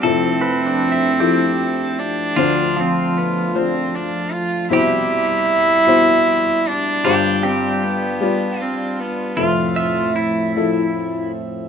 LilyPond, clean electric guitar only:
\new Staff \with { instrumentName = "Clean electric guitar" } { \time 6/8 \key f \lydian \tempo 4. = 51 g'8 b'16 d'16 e''8 g'4.~ | g'8 f2~ f8~ | f8 r2 r8 | r8 g'2~ g'8~ |
g'8 e''2~ e''8 | }